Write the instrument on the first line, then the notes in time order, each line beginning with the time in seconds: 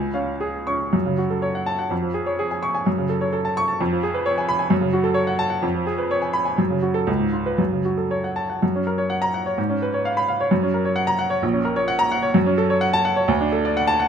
grand piano
Already playing: C#2 G#5
0.14 C#4 F5
0.40 G#4
0.67 C#4 C#6
0.93 F#2
1.05 C#3
1.18 F#4
1.30 A4
1.42 C#5
1.55 F#5
1.66 A5
1.79 F#5
1.90 F2
2.02 F3
2.14 G#4
2.26 C#5
2.39 G#4
2.51 G#5
2.63 C#6
2.75 G#5
2.86 F#2
2.98 C#3
3.09 A4
3.21 C#5
3.33 A4
3.45 A5
3.57 C#6
3.68 A5
3.81 F2
3.93 F3
4.03 G#4
4.14 B4
4.26 C#5
4.38 G#5
4.49 B5
4.59 G#5
4.70 F#2
4.81 C#3
4.93 F#4
5.04 A4
5.14 C#5
5.27 F#5
5.39 A5
5.50 F#5
5.62 F2
5.75 F3
5.87 G#4
5.98 B4
6.11 C#5
6.22 G#5
6.33 B5
6.45 G#5
6.58 F#2
6.70 C#3
6.82 F#4
6.94 A4
7.07 C#2
7.19 G#2
7.33 F4
7.46 B4
7.58 F#2
7.72 C#3
7.85 F#4
7.98 A4
8.11 C#5
8.24 F#5
8.36 A5
8.50 F#5
8.63 F#2
8.76 C#4
8.87 A#4
8.98 C#5
9.10 F#5
9.22 A#5
9.34 F#5
9.46 C#5
9.58 G#2
9.70 C#4
9.82 B4
9.94 C#5
10.05 F5
10.17 B5
10.28 F5
10.41 C#5
10.51 F#2
10.63 C#4
10.74 A#4
10.85 C#5
10.96 F#5
11.07 A#5
11.19 F#5
11.30 C#5
11.42 A#1
11.53 C#4
11.65 A#4
11.76 C#5
11.88 F#5
11.99 A#5
12.12 F#5
12.22 C#5
12.34 F#2
12.46 C#4
12.58 A4
12.70 C#5
12.81 F#5
12.93 A5
13.05 F#5
13.16 C#5
13.28 D2
13.40 D4
13.52 A4
13.65 D5
13.77 F#5
13.87 A5
14.00 F#5